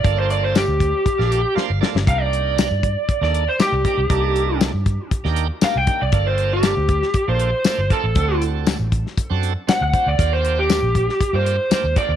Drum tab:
HH |x-x-x-x-x-x-----|x-x-x-x-x-x-x-x-|x-x-x-x-x-x-x-x-|x-x-x-x-x-x-x-x-|
TB |----x-----------|----x-------x---|----x-------x---|----x-------x---|
SD |----o----o--o-oo|----o----o--o---|----o----o--o---|----o--o----o---|
BD |o-----o-o-------|o-----o-o-----o-|o-----o-o-----o-|o-----o-o-----o-|

HH |x-x-x-x-x-x-x-x-|x-x-x-x-x-x-x-x-|
TB |----x-------x---|----x-------x---|
SD |----o--o----o---|----o--o----o---|
BD |o-----o-o-----o-|o-----o-o-----o-|